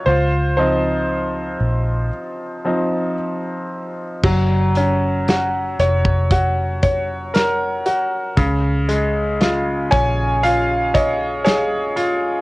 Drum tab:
CC |----------------|x---------------|----------------|
HH |----------------|--x-x-x-x-x-x-x-|x-x-x-x-x-x-x-x-|
SD |----------------|----o-------o---|----o-------o---|
BD |----------------|o------oo-o-----|o-----o---o-----|